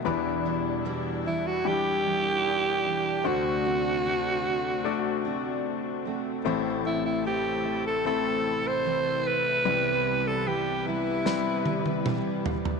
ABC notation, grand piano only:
X:1
M:4/4
L:1/8
Q:1/4=75
K:Ador
V:1 name="Grand piano"
[G,DEB]4 [G,DEG]4 | [A,DFc]4 [A,DFd]4 | [A,CEc]4 [A,CEA]4 | [G,CEB]4 [G,CEB]4 |]
V:2 name="Grand piano" clef=bass
[E,,E,]8 | [D,,D,]8 | [A,,,A,,]8 | [C,,C,]8 |]